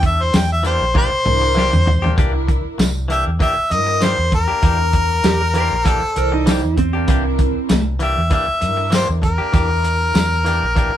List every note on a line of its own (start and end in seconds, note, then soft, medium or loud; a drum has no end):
0.00 0.30 E2 loud
0.00 0.33 D4 medium
0.00 0.34 E4 medium
0.00 0.34 A4 medium
0.00 muted clean electric guitar stroke soft
0.00 kick medium
0.00 closed hi-hat medium
0.06 0.24 E5 medium
0.22 0.38 C5 medium
0.33 0.77 E2 loud
0.33 0.51 G5 loud
0.33 muted clean electric guitar stroke soft
0.33 snare loud
0.33 closed hi-hat medium
0.33 tambourine loud
0.52 0.64 E5 loud
0.63 0.83 E3 medium
0.63 0.84 A#3 medium
0.63 0.84 D4 medium
0.63 0.85 G4 medium
0.63 0.95 C5 medium
0.63 closed hi-hat medium
0.81 1.09 A#1 medium
0.94 1.11 E3 medium
0.94 1.11 A#3 loud
0.94 1.11 D4 medium
0.94 1.09 G4 loud
0.94 2.15 C5 loud
0.94 kick medium
0.94 high tom medium
1.11 muted clean electric guitar stroke soft
1.11 muted fingered electric bass stroke soft
1.25 1.69 C2 medium
1.25 1.73 D4 medium
1.25 1.73 E4 medium
1.25 1.73 A#4 medium
1.25 muted clean electric guitar stroke soft
1.25 mid tom medium
1.41 muted clean electric guitar stroke medium
1.55 1.72 E3 medium
1.55 1.72 A#3 medium
1.55 1.72 D4 medium
1.55 1.71 G4 medium
1.55 snare medium
1.72 2.14 E2 medium
1.72 muted clean electric guitar stroke soft
1.72 mid tom medium
1.86 muted clean electric guitar stroke soft
1.86 floor tom loud
2.02 2.16 A#3 medium
2.02 2.17 D4 medium
2.02 2.17 G4 medium
2.02 floor tom medium
2.17 2.61 C2 medium
2.17 2.34 E3 medium
2.17 2.34 A#3 medium
2.17 2.79 D4 medium
2.17 2.33 D4 medium
2.17 2.79 E4 medium
2.17 2.32 G4 loud
2.17 2.79 A#4 medium
2.17 kick loud
2.17 closed hi-hat medium
2.33 muted clean electric guitar stroke soft
2.48 muted clean electric guitar stroke soft
2.48 kick medium
2.48 closed hi-hat medium
2.65 muted fingered electric bass stroke soft
2.78 3.22 C2 medium
2.78 muted clean electric guitar stroke soft
2.78 snare loud
2.78 closed hi-hat medium
2.78 tambourine loud
3.08 3.28 E3 medium
3.08 3.29 A#3 medium
3.08 3.30 D4 medium
3.08 3.30 G4 medium
3.08 3.25 E5 medium
3.08 closed hi-hat medium
3.27 3.39 E2 medium
3.39 3.56 E3 medium
3.39 3.56 A#3 medium
3.39 3.56 D4 medium
3.39 3.55 G4 medium
3.39 3.74 E5 loud
3.39 kick medium
3.39 closed hi-hat medium
3.56 muted clean electric guitar stroke soft
3.56 muted fingered electric bass stroke soft
3.70 4.15 G2 medium
3.70 4.18 C4 medium
3.70 4.18 E4 medium
3.70 4.18 A#4 medium
3.70 4.05 D#5 loud
3.70 muted clean electric guitar stroke soft
3.70 closed hi-hat medium
3.87 muted clean electric guitar stroke soft
4.01 4.18 E3 medium
4.01 4.18 A#3 medium
4.01 4.18 D4 medium
4.01 4.17 G4 medium
4.01 4.33 C5 loud
4.01 snare medium
4.01 closed hi-hat medium
4.01 tambourine loud
4.18 4.47 E2 medium
4.18 muted clean electric guitar stroke soft
4.32 5.86 A#4 loud
4.32 muted clean electric guitar stroke soft
4.32 kick medium
4.32 closed hi-hat medium
4.48 4.62 A#3 soft
4.48 4.62 D4 soft
4.48 4.62 G4 medium
4.48 muted fingered electric bass stroke soft
4.62 5.20 E2 loud
4.62 4.79 E3 medium
4.62 4.79 A#3 medium
4.62 5.24 D4 medium
4.62 4.78 D4 medium
4.62 5.24 E4 medium
4.62 4.78 G4 medium
4.62 5.25 A#4 medium
4.62 kick loud
4.62 closed hi-hat medium
4.79 muted clean electric guitar stroke soft
4.93 muted clean electric guitar stroke soft
4.93 kick medium
4.93 closed hi-hat medium
5.24 5.68 E2 medium
5.24 5.41 G4 medium
5.24 muted clean electric guitar stroke soft
5.24 snare loud
5.24 closed hi-hat medium
5.24 tambourine loud
5.42 5.55 A#4 medium
5.54 5.74 E3 medium
5.54 5.75 A#3 medium
5.54 5.75 D4 medium
5.54 5.76 G4 medium
5.54 6.15 C5 medium
5.54 closed hi-hat medium
5.71 6.00 A#1 medium
5.84 6.02 E3 medium
5.84 6.02 A#3 loud
5.84 6.02 D4 medium
5.84 6.01 G4 medium
5.84 6.75 A4 loud
5.84 kick medium
5.84 closed hi-hat medium
6.02 muted clean electric guitar stroke soft
6.02 muted fingered electric bass stroke soft
6.16 6.60 C2 medium
6.16 6.64 E3 medium
6.16 6.33 A#4 medium
6.16 6.64 C5 loud
6.16 6.63 D5 medium
6.16 muted clean electric guitar stroke soft
6.16 closed hi-hat medium
6.32 6.77 D#4 medium
6.32 muted clean electric guitar stroke medium
6.46 6.63 E3 medium
6.46 6.64 A#3 medium
6.46 6.63 D4 medium
6.46 6.62 G4 medium
6.46 snare loud
6.46 closed hi-hat medium
6.46 tambourine loud
6.63 7.05 E2 medium
6.63 muted clean electric guitar stroke soft
6.77 7.84 C4 medium
6.77 muted clean electric guitar stroke soft
6.77 kick medium
6.77 closed hi-hat medium
6.93 7.07 A#3 soft
6.93 7.08 D4 soft
6.93 7.08 G4 medium
7.08 7.52 C2 medium
7.08 7.25 E3 medium
7.08 7.25 A#3 medium
7.08 7.69 D4 medium
7.08 7.24 D4 medium
7.08 7.69 E4 medium
7.08 7.23 G4 medium
7.08 7.70 A#4 medium
7.08 kick loud
7.08 closed hi-hat medium
7.24 muted clean electric guitar stroke soft
7.39 muted clean electric guitar stroke soft
7.39 kick medium
7.39 closed hi-hat medium
7.56 muted fingered electric bass stroke soft
7.69 8.13 C2 medium
7.69 muted clean electric guitar stroke soft
7.69 snare loud
7.69 closed hi-hat medium
7.69 tambourine loud
7.99 8.19 E3 medium
7.99 8.20 A#3 medium
7.99 8.21 D4 medium
7.99 8.21 G4 medium
7.99 8.30 E5 medium
7.99 closed hi-hat medium
8.17 8.30 E2 medium
8.30 8.47 E3 medium
8.30 8.47 A#3 medium
8.30 8.46 D4 medium
8.30 8.46 G4 medium
8.30 8.90 E5 loud
8.30 kick medium
8.30 closed hi-hat medium
8.47 muted clean electric guitar stroke soft
8.47 muted fingered electric bass stroke soft
8.61 9.05 G2 medium
8.61 9.09 D4 medium
8.61 9.09 E4 medium
8.61 9.09 A#4 medium
8.61 muted clean electric guitar stroke soft
8.61 closed hi-hat medium
8.77 muted clean electric guitar stroke soft
8.90 9.08 E3 medium
8.90 9.09 A#3 medium
8.90 9.08 D4 medium
8.90 9.07 G4 medium
8.90 snare medium
8.90 closed hi-hat medium
8.90 tambourine loud
8.95 9.08 C5 medium
9.08 9.37 E2 medium
9.08 muted clean electric guitar stroke soft
9.22 10.97 A#4 loud
9.22 muted clean electric guitar stroke soft
9.22 kick medium
9.22 closed hi-hat soft
9.38 9.52 A#3 soft
9.38 9.53 D4 soft
9.38 9.53 G4 medium
9.38 muted fingered electric bass stroke soft
9.53 10.11 E2 medium
9.53 9.70 E3 medium
9.53 9.70 A#3 medium
9.53 10.15 D4 medium
9.53 9.69 D4 medium
9.53 10.15 E4 medium
9.53 9.68 G4 medium
9.53 10.15 A#4 medium
9.53 kick loud
9.53 closed hi-hat medium
9.69 muted clean electric guitar stroke soft
9.84 muted clean electric guitar stroke soft
9.84 closed hi-hat medium
10.14 10.59 E2 medium
10.14 muted clean electric guitar stroke soft
10.14 snare loud
10.14 closed hi-hat medium
10.14 tambourine loud
10.45 10.64 E3 medium
10.45 10.65 A#3 medium
10.45 10.66 D4 medium
10.45 10.66 G4 medium
10.45 closed hi-hat medium
10.63 10.91 A#1 medium
10.75 10.92 E3 medium
10.75 10.93 A#3 medium
10.75 10.92 D4 medium
10.75 10.91 G4 medium
10.75 kick medium
10.75 closed hi-hat medium
10.93 muted clean electric guitar stroke medium